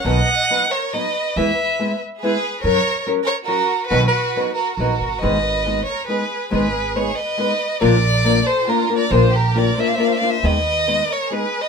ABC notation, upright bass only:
X:1
M:3/4
L:1/8
Q:1/4=139
K:B
V:1 name="Upright bass" clef=bass
B,,, z4 z | E,, z4 z | F,, z4 z | B,,, z3 A,,, G,,, |
[K:G#m] G,,,4 z2 | G,,,4 z2 | A,,,4 z2 | A,,,4 z2 |
D,,4 z2 |]